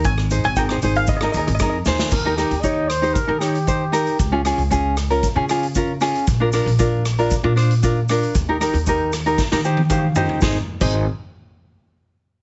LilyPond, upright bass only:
\new Staff \with { instrumentName = "Upright bass" } { \clef bass \time 4/4 \key aes \major \tempo 4 = 116 aes,,8. aes,,8. aes,,4 ees,16 aes,,16 f,8 ees,8 | ees,8. ees,4. ees4.~ ees16 | des,8. des,4. des4.~ des16 | bes,,8. bes,,4. bes,4.~ bes,16 |
ees,8. ees,4. ees4.~ ees16 | aes,,16 r8 aes,,8 r2 r8. | }